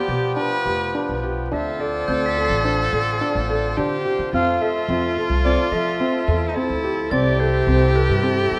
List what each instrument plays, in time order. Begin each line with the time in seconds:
Already playing: harmonium F3 B3 G4, viola G4, clarinet D5
0.08 upright bass B2, felt piano G4
0.36 felt piano D4, viola B4
0.65 upright bass F1, felt piano G4
0.94 felt piano D4, clarinet B4
1.09 upright bass B1
1.23 felt piano G4
1.51 upright bass D2, harmonium D3 C4 F4, felt piano D4, viola A4, clarinet E5
1.80 felt piano A4, clarinet D5
2.08 upright bass D2, felt piano C4, glockenspiel G6
2.26 glockenspiel B6
2.37 felt piano A4
2.45 glockenspiel C7
2.50 upright bass A1
2.65 felt piano D4, clarinet C5
2.93 upright bass A1, felt piano A4, clarinet D5
3.21 felt piano D4
3.35 upright bass A1
3.49 felt piano A4
3.77 upright bass D3, felt piano D4, viola G4, clarinet C5
4.05 felt piano G4
4.19 upright bass D3
4.33 upright bass F2, harmonium F3 A3 A4, felt piano C4, viola F4, clarinet F5
4.61 felt piano A4, clarinet E5
4.88 upright bass F2, felt piano C4
5.17 felt piano A4
5.30 upright bass C2
5.45 felt piano C4, clarinet D5
5.72 upright bass F3, felt piano A4, clarinet E5
6.00 felt piano C4
6.28 upright bass E2, felt piano A4
6.49 viola D#4
6.55 felt piano C4, viola E4, clarinet A4
6.70 upright bass D2
6.84 felt piano G4
7.11 upright bass C2, harmonium C3 E4, felt piano C4, viola G4, clarinet D5, glockenspiel A6
7.39 felt piano A4, clarinet C5
7.67 upright bass C2, felt piano C4
7.95 felt piano A4, clarinet B4
8.10 upright bass G2
8.23 felt piano C4, clarinet A4
8.50 upright bass G2, felt piano G4